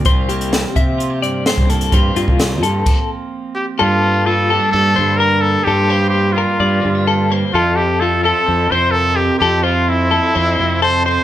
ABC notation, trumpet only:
X:1
M:4/4
L:1/8
Q:1/4=128
K:Gdor
V:1 name="Trumpet"
z8 | z6 z G | F2 A2 A2 B A | G2 G F4 z |
F G A A2 c A G | G F E4 c c |]